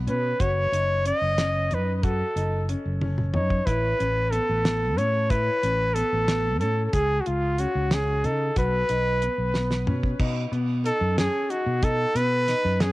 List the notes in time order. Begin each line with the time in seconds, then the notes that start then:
0.07 B2 C#4 B4, closed hi-hat
0.40 F#1 F#4 C#5, kick, closed hi-hat
0.72 F#1 D#4, closed hi-hat
1.05 C#4 D#5, closed hi-hat
1.21 F#1
1.38 C#4, snare, closed hi-hat
1.71 F#2 D#4 B4, closed hi-hat
1.96 B4
2.03 F#4 A4, kick, closed hi-hat
2.36 F#1 D#4, closed hi-hat
2.69 C#4, closed hi-hat
2.86 F#1
3.02 C#4, high tom
3.18 mid tom
3.34 F#2 D#4 C#5, mid tom
3.50 kick
3.66 A1 E4 B4, kick, closed hi-hat
3.99 A1 C#4, closed hi-hat
4.31 B3 A4, closed hi-hat
4.49 A1
4.64 B3, snare, closed hi-hat
4.97 A2 C#4 C#5, closed hi-hat
5.30 E4 B4, kick, closed hi-hat
5.62 A1 C#4, closed hi-hat
5.94 B3 A4, closed hi-hat
6.12 A1
6.28 B3, snare, closed hi-hat
6.60 A2 C#4 A4, closed hi-hat
6.85 A4
6.93 C#2 G#4, kick, closed hi-hat
7.21 F#4
7.26 C#2 F4, closed hi-hat
7.58 C#4 F#4, closed hi-hat
7.75 C#2
7.91 C#4 G#4, snare, closed hi-hat
8.24 C#3 D#4 A4, closed hi-hat
8.56 B1 F#4 B4, kick, closed hi-hat
8.89 B1 D#4, closed hi-hat
9.22 B3, closed hi-hat
9.38 B1
9.54 B3, snare
9.71 snare
9.87 B2 C#4, mid tom
10.04 kick
10.20 B2 D#4, kick, crash
10.52 B2 B3, closed hi-hat
10.85 D#4 A4, closed hi-hat
11.01 F#2
11.17 C#4 G#4, snare, closed hi-hat
11.50 D#4 F#4, closed hi-hat
11.66 B2
11.83 D#4 A4, kick, closed hi-hat
12.15 B2 B3 B4, closed hi-hat
12.48 D#4, snare, closed hi-hat
12.65 F#2
12.80 C#4 G#4, snare, closed hi-hat